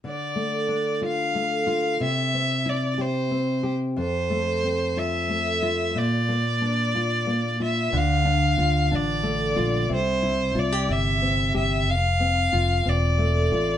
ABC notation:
X:1
M:6/8
L:1/16
Q:3/8=61
K:Dm
V:1 name="Violin"
d6 f6 | e4 d2 c4 z2 | c6 e6 | d8- d2 e2 |
f6 d6 | c4 d2 e4 e2 | f6 d6 |]
V:2 name="Nylon-string guitar"
D,2 A,2 D2 F2 A,2 F2 | C,2 C2 E2 G2 C2 G2 | F,,2 A,2 C2 F2 A,2 F2 | B,,2 B,2 D2 F2 B,2 F2 |
D,2 D2 F2 D2 A,2 F2 | C,2 E2 F G E2 C2 G2 | z2 C2 F2 C2 A,2 F2 |]
V:3 name="Fretless electric bass" clef=bass
z12 | z12 | z12 | z12 |
D,,4 D,,2 A,,,4 B,,,2 | C,,4 C,,2 G,,,4 G,,,2 | F,,,4 F,,,2 E,,,4 A,,,2 |]